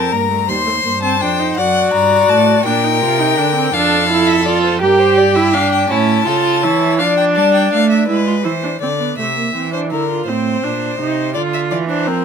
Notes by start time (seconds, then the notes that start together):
Already playing: F2 C4 A#4 A5
0.12 G2 A#3 A#5
0.31 A3
0.48 D#2 G3 C5 C6
0.66 A3
0.85 G2 A#3
1.02 C4 A5
1.21 F2 D4 G5
1.39 D#4
1.57 F#2 F#4 D5 F#5
1.93 G2 A#5
2.29 A2 A5
2.65 A#2 D4 A#4 G5
2.83 D#4
3.02 C3 F4
3.19 D#4
3.38 D3 D4
3.56 C4
3.74 F2 D4 A4 F5
4.10 E4
4.27 E5
4.46 F4 D5
4.63 C5
4.82 G2 G4 A#4
5.00 C5
5.17 D5
5.36 E4 E5
5.54 D4 F5
5.71 G5
5.90 A2 C#4 E4 A5
6.26 C#3 F4 A4
6.63 E3 E4 C#5
6.98 F3 D4 D5 F5
7.17 G5
7.36 G3 A5
7.54 G5
7.73 A3 F5
7.90 E5
8.08 G#3 E4 B4
8.27 F4
8.44 E3 E4 C5
8.63 D4
8.81 D3 C4 D5
9.00 B3
9.18 C3 A3 E5
9.37 A#3
9.55 E3 C4
9.73 D4 C5
9.91 D3 E4 A#4
10.09 F4
10.27 A2 C4 C5
10.63 A#2 D4
10.99 C3 D#4
11.34 D3 F4 D5
11.54 E5
11.71 E3 D5
11.89 D4 C5
12.07 F3 C4 A#4